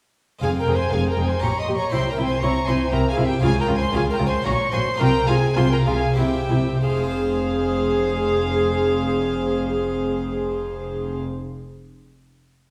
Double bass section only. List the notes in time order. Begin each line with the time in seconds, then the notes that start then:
0.43 F1
0.68 F1
0.93 F1
1.18 F1
1.43 A#1
1.67 A#1
1.92 C2
2.18 C2
2.43 C2
2.68 C2
2.92 C2
3.17 C2
3.42 C#2
3.68 C#2
3.93 C#2
4.20 C#2
4.45 A#1
4.73 A#1
5.00 C2
5.29 C2
5.58 C2
5.88 C2
6.18 C2
6.51 C2
6.84 F1